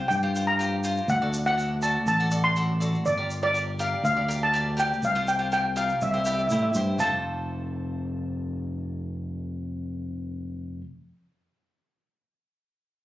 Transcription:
0.08 G2 G5, shaker
0.23 F4 G4 C5
0.35 F4 G4 C5, shaker
0.47 A#5
0.59 F4 G4 C5, shaker
0.84 F4 G4 C5, shaker
0.97 shaker
1.08 D2 F#5, shaker
1.22 F#4 A4 D5
1.34 shaker
1.46 F#4 A4 D5 F#5
1.57 F#4 A4 D5, shaker
1.82 F#4 A4 D5 A5, shaker
2.06 A1 A5, shaker
2.20 F#4 A4 D5
2.31 F#4 A4 D5, shaker
2.44 C6
2.56 F#4 A4 D5, shaker
2.80 F#4 A4 D5, shaker
2.94 shaker
3.06 G1 D5, shaker
3.17 G4 A#4 D5
3.31 shaker
3.43 G4 A#4 D5
3.54 G4 A#4 D5, shaker
3.79 G4 A#4 D5 F5, shaker
4.03 D2 F5, shaker
4.16 G4 A#4 D5
4.28 G4 A#4 D5, shaker
4.43 A5
4.53 G4 A#4 D5, shaker
4.77 G4 A#4 D5 G5, shaker
4.93 shaker
5.03 C2 F5, shaker
5.15 F4 G4 C5
5.28 G5, shaker
5.39 F4 G4 C5
5.52 F4 G4 A#4 G5, shaker
5.76 F4 G4 A#4 F5, shaker
5.89 shaker
6.01 C2 E5, shaker
6.11 E4 G4 C5 E5
6.18 E5
6.25 E4 G4 D5 E5, shaker
6.32 E5
6.39 E5, shaker
6.47 A2 E4 E5, shaker
6.52 G4 C5
6.56 E5
6.63 E5
6.74 G2 E4 G4 C5, shaker
6.98 F1 F4 A4 A5, shaker
7.03 C5

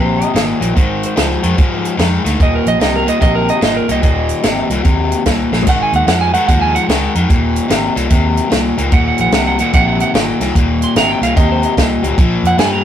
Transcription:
Already playing: A#1 D#2 C3 C5
0.21 D#5, closed hi-hat
0.34 G#1 D#2 A#2, snare, closed hi-hat
0.60 A#1 D#2 A#2, closed hi-hat
0.76 G#1 G#2 D#3 C5, kick, closed hi-hat
1.03 C5, closed hi-hat
1.16 C#2 G#2 F3, snare, closed hi-hat
1.43 F2 G#2 D#3, closed hi-hat
1.57 G#2 F3, kick, closed hi-hat
1.85 closed hi-hat
1.97 F2 G#2 D#3, snare, closed hi-hat
2.24 D2 G#2 D#3, snare, closed hi-hat
2.40 D#1 D#2 A#2 D#5, kick, closed hi-hat
2.55 A#4
2.66 A#1 D#5, closed hi-hat
2.80 C2 D#2 C3 D#5, snare, closed hi-hat
2.96 A#4
3.06 D#2 A#2 D#5, closed hi-hat
3.20 A#1 D#2 C3 D#5, kick, closed hi-hat
3.35 A#4
3.49 D#5, closed hi-hat
3.61 G#1 D#2 A#2 D#5, snare, closed hi-hat
3.77 A#4
3.88 C2 D#2 A#2 D#5, closed hi-hat
4.02 D#1 D#2 A#2 D#5, kick, closed hi-hat
4.29 closed hi-hat
4.43 G#1 D#2 C3, snare, closed hi-hat
4.70 C2 D#2 A#2, closed hi-hat
4.84 D#2 C3, kick, closed hi-hat
5.12 closed hi-hat
5.26 C2 D#2 A#2, kick, snare, closed hi-hat
5.51 A#1 D#2 A#2, snare
5.62 floor tom
5.67 G#1 G#2 D#3 F#5, kick, closed hi-hat, splash
5.82 G#5
5.92 D#2 F#5, closed hi-hat
6.07 F2 G#2 F3 F#5, snare, closed hi-hat
6.21 G#5
6.34 G#2 D#3 F#5, closed hi-hat
6.48 D#2 G#2 F3 F#5, kick, closed hi-hat
6.61 G#5
6.75 F#5, closed hi-hat
6.88 C#2 G#2 D#3 F#5, snare, closed hi-hat
7.15 F2 G#2 D#3, closed hi-hat
7.29 D#1 D#2 A#2, kick, closed hi-hat
7.56 closed hi-hat
7.68 G#1 D#2 C3, snare, closed hi-hat
7.95 C2 D#2 A#2, closed hi-hat
8.09 D#2 C3, kick, closed hi-hat
8.37 closed hi-hat
8.50 C2 D#2 A#2, snare, closed hi-hat
8.77 C#2 D#2 A#2, closed hi-hat
8.92 D#1 D#2 A#2 F#5, kick, closed hi-hat
9.08 F#5
9.18 A#1 F#5, closed hi-hat
9.32 C2 D#2 C3 F#5, snare, closed hi-hat
9.47 F#5
9.59 D#2 A#2 F#5, closed hi-hat
9.73 A#1 D#2 C3 F#5, kick, closed hi-hat
9.88 F#5
10.00 F#5, closed hi-hat
10.14 G#1 D#2 A#2 G5, snare, closed hi-hat
10.40 C2 D#2 A#2, snare, closed hi-hat
10.55 D#1 D#2 A#2, kick, closed hi-hat
10.82 C6, closed hi-hat
10.95 G#1 D#2 C3 A#5, snare, closed hi-hat
11.10 G5
11.21 C2 D#2 A#2 F5, closed hi-hat
11.35 D#2 C3 D#5, kick, closed hi-hat
11.52 C5
11.63 D#5, closed hi-hat
11.77 C2 D#2 A#2, kick, snare, closed hi-hat
12.02 C#2 D#2 A#2, closed hi-hat
12.18 A#1 A#2 F3, kick, closed hi-hat
12.43 F2, closed hi-hat
12.47 F#5
12.58 G2 A#2 G3 G#5, snare, closed hi-hat
12.73 A#5

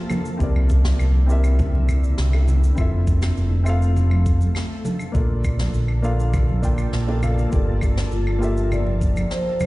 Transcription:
Already playing: F3 A#3 F4 G4 A4 D5 E5
0.10 high bongo, high conga, low conga, cabasa, claves
0.25 cabasa
0.37 C2 D3 C4 E4 G4, kick, cabasa
0.42 A#4 D5
0.56 claves
0.69 kick, high bongo, cabasa
0.84 snare, high conga, cabasa
0.99 C2, cabasa, claves
1.26 C4 E4 G4, cabasa
1.31 A#4 E5
1.44 cabasa, claves
1.59 kick, low conga, cabasa
1.75 high conga
1.89 kick, cabasa, claves
2.04 cabasa
2.18 C2, snare, cabasa
2.33 high bongo, claves
2.48 high bongo, low conga, cabasa
2.64 cabasa
2.75 F1 C4 E4 F4, kick, cabasa, claves
2.79 A3 A4 E5
3.07 kick, high bongo, cabasa
3.22 snare, cabasa, claves
3.37 F1, cabasa
3.64 C4 F4 E5, cabasa, claves
3.68 A4 F5
3.82 cabasa
3.97 low conga, cabasa
4.11 high conga, claves
4.26 kick, high bongo, cabasa
4.41 high conga, cabasa
4.55 snare, cabasa, claves
4.85 high bongo, high conga, low conga, cabasa
4.99 cabasa, claves
5.12 A#1 D3 A#3 D4 F4 A4, kick, cabasa
5.16 A4 D5
5.44 kick, high bongo, cabasa, claves
5.59 snare, high conga, cabasa
5.74 A#1, cabasa
5.88 claves
6.02 A#3 D4 F4 A4 F5, cabasa
6.20 cabasa
6.33 kick, low conga, cabasa, claves
6.49 high conga
6.62 A#3 D4 F4 A4 G5, kick, cabasa
6.78 cabasa, claves
6.93 A#1, snare, cabasa
7.07 A#3 D4 F4 A4 D5, high bongo
7.21 A#3 D4 F4 A4 F5, high bongo, low conga, cabasa, claves
7.38 cabasa
7.49 G1 F3 A#3 F4 G4, kick, cabasa
7.53 A4 D5
7.81 kick, high bongo, cabasa, claves
7.97 snare, cabasa
8.11 G1 F4, cabasa
8.27 claves
8.39 A#3 F4 G4, cabasa
8.43 A4 E5
8.57 cabasa
8.71 D5, low conga, cabasa, claves
8.87 high conga
9.01 kick, high bongo, cabasa
9.16 high conga, cabasa, claves
9.31 C5, snare, cabasa
9.60 high bongo, high conga, low conga, cabasa, claves

